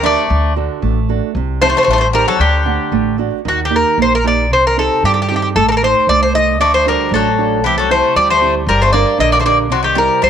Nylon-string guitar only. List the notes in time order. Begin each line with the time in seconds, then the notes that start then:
Already playing: D3
0.03 D4 G4 A#4
0.30 D3
0.56 D4 F#4 A4
0.82 A3
1.09 D4 F#4 A4
1.37 C3
1.62 C4 D#4 G4
1.88 G3
2.14 C4 D#4 G4
2.40 D3
2.65 A3 D4 F#5
2.92 A3
3.18 A3 D4 F#4
3.45 D#3
3.70 A#3 D#4 G4
3.98 A#3
4.24 A#3 D#4 G4
4.51 C3
4.77 C4 D#4 G4
5.05 G3
5.31 C4 D#4 G4
5.57 A3
5.82 D#4 A4 C5
6.09 A3
6.34 D#4 A4 C5
6.60 D3
6.86 D4 F#4 A4
7.12 A3
7.38 D4 F#4 A4
7.66 C3
7.90 C4 E4 G4
8.17 G3
8.41 C4 E4 G4
8.68 G3
8.93 D4 G4 A#4
9.18 D3
9.45 D4 G4 A#4
9.70 C3
9.96 C4 E4 G4
10.22 G3